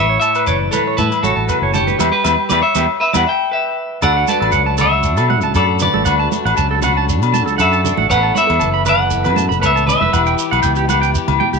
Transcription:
Already playing: fingered electric bass A1, clean electric guitar A2 E4 C#5 E5
0.10 clean electric guitar C#5
0.20 clean electric guitar C#5 E5 A5, muted clean electric guitar stroke, shekere
0.35 clean electric guitar B4, low agogo, shekere
0.46 fingered electric bass F#1, clean electric guitar E3 B4 C#5 D5, shekere
0.71 clean electric guitar E4 A4 B4 C#5, high conga, low conga, low agogo, shekere
0.87 clean electric guitar C#5
0.97 clean electric guitar A2 E4 B4 A5, fingered electric bass A2, high conga, shekere
1.12 low agogo, shekere
1.23 fingered electric bass A1, clean electric guitar E4 F#4 A4 C#5, high conga, shekere
1.36 fingered electric bass A1, clean electric guitar A5
1.49 clean electric guitar C#3 B4, low agogo, shekere
1.62 fingered electric bass F#1, clean electric guitar C#5
1.74 clean electric guitar D3 G4 C#5 A5, high conga, low conga, shekere
1.87 clean electric guitar B4, high conga, shekere
1.98 fingered electric bass E2, clean electric guitar G3 B3 E4 G4 B4 E5, high conga, low agogo, shekere
2.12 clean electric guitar G4 B4
2.24 fingered electric bass E2, clean electric guitar G3 B3 E4 G4 B4 E5, high conga, low agogo, shekere
2.49 fingered electric bass E2, clean electric guitar B3 E4 G4 B4 D5 E5, high conga, low agogo, shekere
2.53 clean electric guitar G3
2.62 clean electric guitar C#5 E5
2.75 fingered electric bass E2, clean electric guitar G3 B3 E4 G4 B4 E5, high conga, low agogo, shekere
3.00 clean electric guitar B4 E5
3.13 fingered electric bass E2, clean electric guitar G3 B3 E4 G4 B4 D5 E5 F#5, high conga, low agogo, shekere
3.27 clean electric guitar E5 G5
3.51 clean electric guitar B4 E5
4.02 fingered electric bass D2, clean electric guitar A3 D4 F#4 A4 D5 F#5, tonewheel organ D4 F#4 A4, low agogo, shekere
4.17 clean electric guitar F#5
4.28 clean electric guitar D4 B4 D5 A5, high conga, shekere
4.40 fingered electric bass A1, clean electric guitar A4, low agogo
4.52 fingered electric bass C#2, clean electric guitar F#3 F#5, shekere
4.66 clean electric guitar A5
4.77 clean electric guitar F#4 A4 C#5 E5, low conga, low agogo, shekere
5.03 clean electric guitar D4, shekere
5.17 fingered electric bass B2, clean electric guitar A4, low agogo, shekere
5.29 clean electric guitar A2 F#5, high conga
5.41 fingered electric bass C#2, clean electric guitar A5, shekere
5.55 fingered electric bass F#2, clean electric guitar F#4 A4 D5, low agogo, shekere
5.79 clean electric guitar B4 D5, muted clean electric guitar stroke, low conga, shekere
5.94 fingered electric bass A1, clean electric guitar A4, high conga
6.05 fingered electric bass D2, clean electric guitar A3 D4 F#4 F#5, low agogo, shekere
6.19 clean electric guitar A5
6.32 clean electric guitar D4, high conga, shekere
6.45 fingered electric bass A1, clean electric guitar F#5, low agogo
6.57 fingered electric bass C#2, clean electric guitar F#3 A5, shekere
6.71 clean electric guitar A4
6.82 clean electric guitar F#4 F#5, low conga, low agogo, shekere
6.97 clean electric guitar A5
7.09 clean electric guitar D4, shekere
7.22 fingered electric bass B2, low agogo, shekere
7.34 clean electric guitar A5, muted clean electric guitar stroke, high conga, shekere
7.46 fingered electric bass C#2, clean electric guitar A4, shekere
7.58 fingered electric bass F#2, clean electric guitar F#4 A4 E5 F#5, low agogo, shekere
7.72 clean electric guitar A5, shekere
7.84 clean electric guitar D4 A4, low conga, shekere
7.97 fingered electric bass A1, clean electric guitar F#5, high conga
8.10 fingered electric bass A1, tonewheel organ B3 B4, clean electric guitar E4 B4 C#5 F#5, muted clean electric guitar stroke, low agogo, shekere
8.14 clean electric guitar A4
8.23 clean electric guitar A5
8.35 clean electric guitar E4 C#5 E5 B5, high conga, shekere
8.47 fingered electric bass E2, clean electric guitar A4, low agogo
8.60 fingered electric bass F#1, clean electric guitar E3 A5, shekere
8.74 clean electric guitar B5
8.86 clean electric guitar A4 B4 D5 F#5, low conga, low agogo, shekere
9.11 clean electric guitar E4, shekere
9.24 fingered electric bass F#2, clean electric guitar B4, low agogo, shekere
9.36 clean electric guitar A2 A5, high conga, shekere
9.49 fingered electric bass F#1, clean electric guitar B5, shekere
9.62 fingered electric bass C#2, clean electric guitar A4 B4 C#5, low agogo, shekere
9.66 clean electric guitar E5
9.76 clean electric guitar A5, shekere
9.87 clean electric guitar C#4 B4 E5, low conga, shekere
10.01 fingered electric bass F1, clean electric guitar E4 B4, high conga
10.13 fingered electric bass E1, clean electric guitar E3 E4 G4 F#5, tonewheel organ E4 G4, low agogo, shekere
10.26 clean electric guitar G5, shekere
10.38 clean electric guitar G4, shekere
10.51 fingered electric bass B1, clean electric guitar F#5, low agogo
10.63 fingered electric bass C#2, clean electric guitar B3 G5, shekere
10.76 clean electric guitar G4, shekere
10.88 clean electric guitar G4 D5 F#5, high conga, low agogo, shekere
11.02 clean electric guitar G5, shekere
11.15 clean electric guitar G4, shekere
11.28 fingered electric bass C#2, low conga, low agogo
11.40 clean electric guitar B2 G5, high conga
11.53 fingered electric bass C#2, clean electric guitar G4, shekere

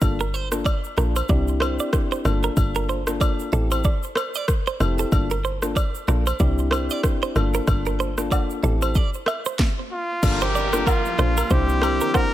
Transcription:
0.01 log drum bass G1, synth keys A#3 D4 F4 A4, kick, high agogo, shaker
0.20 clean electric guitar A#4, shaker
0.34 clean electric guitar C5, shaker
0.52 synth keys A#3 D4 F4 A4, cross-stick, shaker
0.65 clean electric guitar D5, kick, high agogo, shaker
0.84 shaker
0.97 log drum bass A#1, synth keys A#3 D4 F4 A4, clean electric guitar A#4, cross-stick, shaker
1.16 clean electric guitar C5, high agogo, shaker
1.29 log drum bass C2, synth keys C4 D4 E4 G4, clean electric guitar D5, kick, shaker
1.48 shaker
1.60 clean electric guitar C5, cross-stick, high agogo, shaker
1.79 clean electric guitar D5, shaker
1.93 kick, cross-stick, shaker
2.12 clean electric guitar C5, shaker
2.25 log drum bass G1, synth keys A#3 D4 F4 A4, cross-stick, high agogo, shaker
2.43 clean electric guitar A#4, shaker
2.57 log drum bass G1, kick, high agogo, shaker
2.75 clean electric guitar A#4, shaker
2.89 clean electric guitar C5, shaker
3.07 synth keys A#3 D4 F4 A4, cross-stick, shaker
3.21 clean electric guitar D5, kick, high agogo, shaker
3.39 shaker
3.52 log drum bass A1, synth keys C4 E4 G4 A4, clean electric guitar A4, shaker
3.71 clean electric guitar C5, high agogo, shaker
3.84 clean electric guitar D5, kick, shaker
4.03 shaker
4.15 clean electric guitar C5, cross-stick, high agogo, shaker
4.35 clean electric guitar D5, shaker
4.48 kick, cross-stick, shaker
4.67 clean electric guitar C5, shaker
4.80 log drum bass F1, synth keys C4 E4 G4 A4, cross-stick, high agogo, shaker
4.98 clean electric guitar A4, shaker
5.12 log drum bass G1, synth keys A#3 D4 F4 A4, kick, high agogo, shaker
5.30 clean electric guitar A#4, shaker
5.45 clean electric guitar C5, shaker
5.62 synth keys A#3 D4 F4 A4, cross-stick, shaker
5.76 clean electric guitar D5, kick, high agogo, shaker
5.95 shaker
6.08 log drum bass A#1, synth keys A#3 D4 F4 A4, clean electric guitar A#4, cross-stick, shaker
6.27 clean electric guitar C5, high agogo, shaker
6.39 log drum bass C2, synth keys C4 D4 E4 G4, clean electric guitar D5, kick, shaker
6.58 shaker
6.71 clean electric guitar C5, cross-stick, high agogo, shaker
6.90 clean electric guitar D5, shaker
7.03 kick, cross-stick, shaker
7.22 clean electric guitar C5, shaker
7.35 log drum bass G1, synth keys A#3 D4 F4 A4, cross-stick, high agogo, shaker
7.54 clean electric guitar A#4, shaker
7.67 log drum bass G1, kick, cross-stick, high agogo, shaker
7.86 clean electric guitar A#4, shaker
8.00 clean electric guitar C5, shaker
8.18 synth keys A#3 D4 F4 A4, cross-stick, shaker
8.31 clean electric guitar D5, kick, high agogo, low woodblock, shaker
8.50 shaker
8.63 log drum bass A1, synth keys C4 E4 G4 A4, clean electric guitar A4, shaker
8.82 clean electric guitar C5, high agogo, shaker
8.95 clean electric guitar D5, kick, shaker
9.14 shaker
9.26 clean electric guitar E5, cross-stick, high agogo, shaker
9.45 clean electric guitar C5, shaker
9.59 kick, snare
9.91 trumpet F4
10.23 log drum bass G1, ambient pad F3 A#3 G4, synth keys A#3 D4 F4 A4, horn section F4 G4 A#4, kick, crash, downlifter, high agogo, shaker
10.41 trumpet G4, clean electric guitar C5, shaker
10.55 clean electric guitar D5, shaker
10.73 synth keys A#3 D4 F4 A4, cross-stick, shaker
10.87 trumpet F4, clean electric guitar A#4, kick, high agogo, low woodblock, shaker
11.05 shaker
11.18 log drum bass A#1, synth keys A#3 D4 F4 A4, clean electric guitar C5, cross-stick, shaker
11.37 clean electric guitar A#4, high agogo, shaker
11.50 log drum bass C2, ambient pad D3 C4 E4, synth keys C4 D4 E4 G4, horn section E4 G4 C5, trumpet G4, clean electric guitar C5, kick, shaker
11.69 shaker
11.82 clean electric guitar A#4, cross-stick, high agogo, shaker
12.01 clean electric guitar A#4, shaker
12.14 trumpet A#4, clean electric guitar C5, kick, cross-stick, low woodblock, shaker

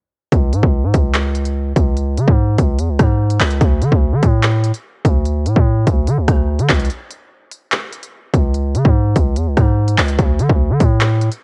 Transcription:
0.32 808-style bass C#2, kick, closed hi-hat
0.53 808-style bass G#2, closed hi-hat
0.63 808-style bass C#2, kick
0.84 808-style bass G#2
0.94 808-style bass C#2, kick, closed hi-hat
1.14 clap, closed hi-hat
1.35 closed hi-hat
1.45 closed hi-hat
1.76 808-style bass C#2, kick, closed hi-hat
1.97 closed hi-hat
2.17 808-style bass C#3, closed hi-hat
2.27 808-style bass G#2, kick
2.58 808-style bass C#2, kick, closed hi-hat
2.79 808-style bass E2, closed hi-hat
2.89 808-style bass C#2
2.99 808-style bass G#2, kick, cross-stick, closed hi-hat
3.30 closed hi-hat
3.40 808-style bass C#2, clap, closed hi-hat, open hi-hat
3.51 closed hi-hat
3.61 808-style bass D2, kick, closed hi-hat
3.82 808-style bass D3, closed hi-hat
3.92 808-style bass D2, kick
4.12 808-style bass D3
4.23 808-style bass A2, kick, closed hi-hat
4.43 clap, closed hi-hat
4.64 closed hi-hat
4.74 closed hi-hat
5.05 808-style bass D2, kick, closed hi-hat
5.25 closed hi-hat
5.46 808-style bass A2, closed hi-hat
5.56 808-style bass A2, kick
5.87 808-style bass D2, kick, closed hi-hat
6.07 808-style bass D3, closed hi-hat
6.18 808-style bass D2
6.28 808-style bass D2, kick, cross-stick, closed hi-hat
6.59 808-style bass D3, closed hi-hat
6.69 808-style bass C#2, kick, clap, closed hi-hat
6.74 closed hi-hat
6.79 closed hi-hat
6.85 closed hi-hat
6.90 closed hi-hat
7.11 closed hi-hat
7.51 closed hi-hat
7.72 clap, closed hi-hat
7.93 closed hi-hat
8.03 closed hi-hat
8.34 808-style bass C#2, kick, closed hi-hat
8.54 closed hi-hat
8.75 808-style bass C#3, closed hi-hat
8.85 808-style bass G#2, kick
9.16 808-style bass C#2, kick, closed hi-hat
9.36 808-style bass E2, closed hi-hat
9.47 808-style bass C#2
9.57 808-style bass G#2, kick, cross-stick, closed hi-hat
9.88 closed hi-hat
9.98 808-style bass C#2, clap, closed hi-hat, open hi-hat
10.08 closed hi-hat
10.19 808-style bass D2, kick, closed hi-hat
10.39 808-style bass D3, closed hi-hat
10.49 808-style bass D2, kick
10.70 808-style bass D3
10.80 808-style bass A2, kick, closed hi-hat
11.01 clap, closed hi-hat
11.21 closed hi-hat
11.32 closed hi-hat

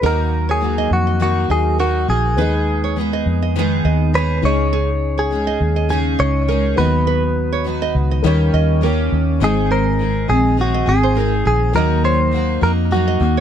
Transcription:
0.01 fingered electric bass D#2, steel-string acoustic guitar D#3 F#3 A#3 D#4 F#4, upright piano A#3 D#4 F#4 D#5, nylon-string guitar A#4
0.06 clean electric guitar A#4
0.49 clean electric guitar G#4, nylon-string guitar C#5
0.61 steel-string acoustic guitar F#3 A#3 D#4 F#4
0.78 nylon-string guitar D#5
0.91 fingered electric bass F2, clean electric guitar F#4
1.07 nylon-string guitar D#5
1.19 steel-string acoustic guitar D#3 F#3 A#3 D#4 F#4, clean electric guitar F#4
1.50 fingered electric bass D#2, upright piano A#3 D#4 F#4 D#5, clean electric guitar G#4, nylon-string guitar D#5
1.79 steel-string acoustic guitar F#3 A#3 D#4 F#4, clean electric guitar F#4, nylon-string guitar A#4
2.08 fingered electric bass A#1, steel-string acoustic guitar A#3 D#4 F#4, clean electric guitar G#4
2.37 fingered electric bass D#2, steel-string acoustic guitar D#3 G#3 B3 D#4 G#4, upright piano B3 D#4 G#4, nylon-string guitar B4
2.41 upright piano D#5
2.84 nylon-string guitar C#5
2.96 steel-string acoustic guitar G#3 B3 D#4 G#4
3.13 nylon-string guitar D#5
3.26 fingered electric bass F2
3.42 nylon-string guitar D#5
3.56 steel-string acoustic guitar D#3 G#3 B3 D#4 G#4
3.85 fingered electric bass D#2, nylon-string guitar D#5
4.13 steel-string acoustic guitar G#3 B3 D#4 G#4, clean electric guitar B4, nylon-string guitar C#5
4.41 fingered electric bass C#2, steel-string acoustic guitar C#3 G#3 C#4 D#4 G#4, upright piano C#4 D#4 G#4, clean electric guitar C#5
4.45 upright piano D#5
4.73 nylon-string guitar G#4
5.18 clean electric guitar G#4, nylon-string guitar C#5
5.31 steel-string acoustic guitar G#3 C#4 D#4 G#4
5.47 nylon-string guitar D#5
5.61 fingered electric bass D#2
5.76 nylon-string guitar D#5
5.89 steel-string acoustic guitar C#3 G#3 C#4 D#4 G#4, clean electric guitar G#4
6.19 fingered electric bass C#2, clean electric guitar C#5, nylon-string guitar D#5
6.48 steel-string acoustic guitar G#3 C#4 D#4 G#4, nylon-string guitar A#4
6.76 fingered electric bass D#2, steel-string acoustic guitar D#3 F#3 B3 D#4 F#4, upright piano B3 D#4 F#4 D#5, clean electric guitar B4
7.07 nylon-string guitar B4
7.53 nylon-string guitar C#5
7.64 steel-string acoustic guitar F#3 B3 D#4 F#4
7.82 nylon-string guitar D#5
7.95 fingered electric bass C#2
8.11 nylon-string guitar D#5
8.22 fingered electric bass D#2, steel-string acoustic guitar D#3 G3 A#3 C#4 G4, upright piano A#3 D#4 G4 C#5
8.54 fingered electric bass D#2, nylon-string guitar D#5
8.81 steel-string acoustic guitar G3 A#3 C#4 G4, nylon-string guitar A#4
9.12 fingered electric bass D#2
9.40 fingered electric bass G#1, steel-string acoustic guitar G#2 D#3 G#3 C4 D#4 G#4, upright piano C4 D#4 G#4 D#5
9.44 clean electric guitar G#4
9.71 clean electric guitar A#4, nylon-string guitar C5
9.99 steel-string acoustic guitar G#3 C4 D#4 G#4
10.28 fingered electric bass A#1, steel-string acoustic guitar G#3 C4 D#4 G#4, clean electric guitar G#4
10.57 steel-string acoustic guitar G#3 C4 D#4 G#4
10.61 clean electric guitar F#4
10.74 nylon-string guitar D#5
10.86 fingered electric bass G#1, steel-string acoustic guitar G#3 C4 D#4 G#4, clean electric guitar G#4
11.03 nylon-string guitar C5
11.15 steel-string acoustic guitar G#3 C4 D#4 G#4, nylon-string guitar A#4
11.45 fingered electric bass A#1, nylon-string guitar G#4, clean electric guitar G#4
11.73 fingered electric bass D#2, steel-string acoustic guitar D#3 F#3 A#3 D#4 F#4, upright piano A#3 D#4 F#4 D#5, clean electric guitar A#4
12.04 clean electric guitar C5, nylon-string guitar C#5
12.31 steel-string acoustic guitar F#3 A#3 D#4 F#4
12.61 fingered electric bass F2, steel-string acoustic guitar A#3 D#4 F#4, clean electric guitar A#4
12.91 steel-string acoustic guitar F#3 A#3 D#4 F#4, clean electric guitar F#4
13.08 nylon-string guitar D#5
13.20 fingered electric bass D#2, steel-string acoustic guitar A#3 D#4 F#4

